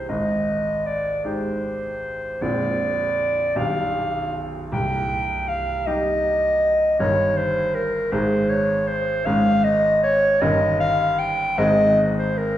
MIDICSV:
0, 0, Header, 1, 3, 480
1, 0, Start_track
1, 0, Tempo, 773196
1, 52, Time_signature, 6, 3, 24, 8
1, 2932, Tempo, 753769
1, 5812, Tempo, 785340
1, 7849, End_track
2, 0, Start_track
2, 0, Title_t, "Clarinet"
2, 0, Program_c, 0, 71
2, 57, Note_on_c, 0, 75, 72
2, 536, Note_on_c, 0, 74, 66
2, 545, Note_off_c, 0, 75, 0
2, 776, Note_off_c, 0, 74, 0
2, 779, Note_on_c, 0, 72, 67
2, 1505, Note_on_c, 0, 74, 81
2, 1514, Note_off_c, 0, 72, 0
2, 2214, Note_on_c, 0, 77, 80
2, 2224, Note_off_c, 0, 74, 0
2, 2763, Note_off_c, 0, 77, 0
2, 2937, Note_on_c, 0, 79, 88
2, 3418, Note_on_c, 0, 77, 79
2, 3428, Note_off_c, 0, 79, 0
2, 3660, Note_on_c, 0, 75, 87
2, 3670, Note_off_c, 0, 77, 0
2, 4377, Note_off_c, 0, 75, 0
2, 4381, Note_on_c, 0, 73, 88
2, 4619, Note_on_c, 0, 72, 92
2, 4629, Note_off_c, 0, 73, 0
2, 4859, Note_on_c, 0, 70, 79
2, 4869, Note_off_c, 0, 72, 0
2, 5095, Note_on_c, 0, 72, 82
2, 5105, Note_off_c, 0, 70, 0
2, 5335, Note_on_c, 0, 73, 83
2, 5344, Note_off_c, 0, 72, 0
2, 5577, Note_on_c, 0, 72, 80
2, 5586, Note_off_c, 0, 73, 0
2, 5819, Note_on_c, 0, 77, 93
2, 5829, Note_off_c, 0, 72, 0
2, 6054, Note_on_c, 0, 75, 102
2, 6063, Note_off_c, 0, 77, 0
2, 6288, Note_off_c, 0, 75, 0
2, 6296, Note_on_c, 0, 73, 86
2, 6526, Note_on_c, 0, 75, 88
2, 6535, Note_off_c, 0, 73, 0
2, 6762, Note_off_c, 0, 75, 0
2, 6765, Note_on_c, 0, 77, 97
2, 7003, Note_on_c, 0, 79, 96
2, 7012, Note_off_c, 0, 77, 0
2, 7242, Note_on_c, 0, 75, 101
2, 7251, Note_off_c, 0, 79, 0
2, 7505, Note_off_c, 0, 75, 0
2, 7609, Note_on_c, 0, 72, 75
2, 7726, Note_on_c, 0, 70, 86
2, 7735, Note_off_c, 0, 72, 0
2, 7849, Note_off_c, 0, 70, 0
2, 7849, End_track
3, 0, Start_track
3, 0, Title_t, "Grand piano"
3, 0, Program_c, 1, 0
3, 0, Control_c, 1, 64, 127
3, 0, Note_on_c, 1, 24, 46
3, 0, Note_on_c, 1, 36, 49
3, 0, Note_on_c, 1, 56, 37
3, 0, Note_on_c, 1, 63, 35
3, 0, Note_on_c, 1, 68, 37
3, 55, Note_on_c, 1, 32, 49
3, 55, Note_on_c, 1, 44, 44
3, 64, Control_c, 1, 64, 0
3, 65, Note_off_c, 1, 36, 0
3, 66, Note_off_c, 1, 68, 0
3, 69, Note_off_c, 1, 56, 0
3, 70, Note_off_c, 1, 63, 0
3, 71, Note_off_c, 1, 24, 0
3, 158, Control_c, 1, 64, 127
3, 772, Note_on_c, 1, 56, 38
3, 774, Note_on_c, 1, 63, 38
3, 780, Note_on_c, 1, 67, 44
3, 1472, Note_off_c, 1, 56, 0
3, 1473, Note_off_c, 1, 63, 0
3, 1474, Note_off_c, 1, 32, 0
3, 1474, Note_off_c, 1, 44, 0
3, 1476, Note_off_c, 1, 67, 0
3, 1496, Note_on_c, 1, 56, 37
3, 1498, Note_on_c, 1, 22, 46
3, 1499, Note_on_c, 1, 34, 58
3, 1501, Note_on_c, 1, 60, 41
3, 1505, Note_on_c, 1, 65, 36
3, 1507, Control_c, 1, 64, 0
3, 1598, Control_c, 1, 64, 127
3, 2186, Note_off_c, 1, 56, 0
3, 2189, Note_off_c, 1, 60, 0
3, 2190, Note_off_c, 1, 22, 0
3, 2190, Note_off_c, 1, 65, 0
3, 2191, Note_off_c, 1, 34, 0
3, 2208, Note_on_c, 1, 23, 52
3, 2208, Note_on_c, 1, 35, 57
3, 2209, Note_on_c, 1, 55, 39
3, 2212, Note_on_c, 1, 62, 37
3, 2213, Note_on_c, 1, 67, 44
3, 2223, Control_c, 1, 64, 0
3, 2339, Control_c, 1, 64, 127
3, 2905, Note_off_c, 1, 55, 0
3, 2906, Note_off_c, 1, 62, 0
3, 2907, Note_off_c, 1, 23, 0
3, 2907, Note_off_c, 1, 35, 0
3, 2907, Note_off_c, 1, 67, 0
3, 2931, Note_on_c, 1, 36, 59
3, 2932, Note_on_c, 1, 24, 52
3, 2941, Control_c, 1, 64, 0
3, 3041, Control_c, 1, 64, 127
3, 3661, Note_on_c, 1, 55, 44
3, 3663, Note_on_c, 1, 63, 47
3, 3666, Note_on_c, 1, 67, 49
3, 4355, Note_off_c, 1, 24, 0
3, 4355, Note_off_c, 1, 36, 0
3, 4356, Note_off_c, 1, 55, 0
3, 4357, Note_off_c, 1, 63, 0
3, 4358, Note_off_c, 1, 67, 0
3, 4378, Note_on_c, 1, 31, 60
3, 4382, Note_on_c, 1, 43, 66
3, 4382, Note_on_c, 1, 51, 49
3, 4384, Note_on_c, 1, 63, 48
3, 4389, Note_on_c, 1, 70, 47
3, 4392, Control_c, 1, 64, 0
3, 4503, Control_c, 1, 64, 127
3, 5068, Note_off_c, 1, 51, 0
3, 5069, Note_off_c, 1, 63, 0
3, 5070, Note_off_c, 1, 31, 0
3, 5072, Note_off_c, 1, 43, 0
3, 5072, Note_off_c, 1, 70, 0
3, 5095, Note_on_c, 1, 56, 49
3, 5098, Note_on_c, 1, 32, 63
3, 5099, Note_on_c, 1, 44, 62
3, 5102, Control_c, 1, 64, 0
3, 5103, Note_on_c, 1, 63, 48
3, 5105, Note_on_c, 1, 68, 50
3, 5204, Control_c, 1, 64, 127
3, 5788, Note_off_c, 1, 56, 0
3, 5792, Note_off_c, 1, 63, 0
3, 5793, Note_off_c, 1, 32, 0
3, 5793, Note_off_c, 1, 68, 0
3, 5794, Note_off_c, 1, 44, 0
3, 5822, Note_on_c, 1, 44, 63
3, 5823, Note_on_c, 1, 32, 62
3, 5824, Control_c, 1, 64, 0
3, 5825, Note_on_c, 1, 56, 46
3, 5826, Note_on_c, 1, 61, 50
3, 5828, Note_on_c, 1, 68, 46
3, 5936, Control_c, 1, 64, 127
3, 6505, Note_off_c, 1, 56, 0
3, 6505, Note_off_c, 1, 61, 0
3, 6506, Note_off_c, 1, 44, 0
3, 6506, Note_off_c, 1, 68, 0
3, 6507, Note_off_c, 1, 32, 0
3, 6526, Note_on_c, 1, 43, 72
3, 6528, Note_on_c, 1, 31, 69
3, 6528, Note_on_c, 1, 51, 52
3, 6530, Note_on_c, 1, 61, 55
3, 6532, Control_c, 1, 64, 0
3, 6532, Note_on_c, 1, 70, 50
3, 6623, Control_c, 1, 64, 127
3, 7217, Note_off_c, 1, 51, 0
3, 7218, Note_off_c, 1, 61, 0
3, 7219, Note_off_c, 1, 43, 0
3, 7219, Note_off_c, 1, 70, 0
3, 7220, Note_off_c, 1, 31, 0
3, 7237, Note_on_c, 1, 51, 49
3, 7238, Note_on_c, 1, 44, 72
3, 7239, Note_on_c, 1, 32, 62
3, 7241, Note_on_c, 1, 60, 53
3, 7244, Note_on_c, 1, 68, 56
3, 7251, Control_c, 1, 64, 0
3, 7337, Control_c, 1, 64, 127
3, 7849, Note_off_c, 1, 32, 0
3, 7849, Note_off_c, 1, 44, 0
3, 7849, Note_off_c, 1, 51, 0
3, 7849, Note_off_c, 1, 60, 0
3, 7849, Note_off_c, 1, 68, 0
3, 7849, End_track
0, 0, End_of_file